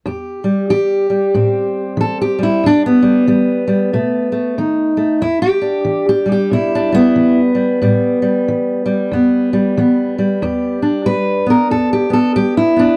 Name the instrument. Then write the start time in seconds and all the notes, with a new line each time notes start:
steel-string acoustic guitar
0.06 E2 G4
0.44 G3
0.70 E3 G4
1.10 G3
1.34 A2 C4
1.97 E3 A4
2.21 G4
2.39 G3
2.43 E4
2.64 E2 D4
2.86 B3
3.02 G3
3.27 E3 G3
3.67 G3
3.93 B2 A3
4.32 A3
4.58 D#3 D#4
4.97 A3
5.22 E2 E4
5.42 G4
5.62 D4
5.85 E3
6.09 G4
6.26 G3
6.32 G4
6.51 B2 E4
6.75 D4
6.92 G3 B3
7.16 E3
7.55 G3
7.82 A2 G3
8.22 G3
8.48 E3
8.86 G3
9.12 E2 B3
9.53 G3
9.77 E3 B3
10.18 G3
10.42 E2 G4
10.82 D4
11.06 G3 B4
11.46 B3 A#4
11.71 E2 A4
11.93 G4
12.10 B3 A4
12.36 G3 G4
12.57 E4
12.76 B3 D4